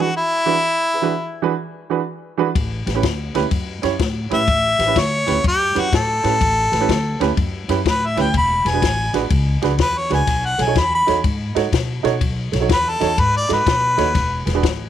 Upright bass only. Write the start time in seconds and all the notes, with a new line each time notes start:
2.55 A1
2.87 A1
3.03 D2
3.35 D2
3.51 F#2
3.83 F#2
3.99 A2
4.31 A2
4.48 A1
4.79 A1
4.96 D2
5.28 D2
5.44 F#2
5.75 F#2
5.92 A2
6.24 A2
6.41 A1
6.72 A1
6.89 D2
7.20 D2
7.37 F#2
7.69 F#2
7.86 A2
8.17 D2
8.34 E1
8.65 E1
8.82 A1
9.13 A1
9.31 C#2
9.62 C#2
9.79 E2
10.10 C#2
10.27 B1
10.59 B1
10.76 E2
11.08 E2
11.24 G#2
11.56 G#2
11.72 B2
12.04 B2
12.21 B1
12.53 B1
12.69 E2
13.01 E2
13.18 G#2
13.50 G#2
13.66 B2
13.98 D#2
14.15 E1
14.47 E1
14.63 A1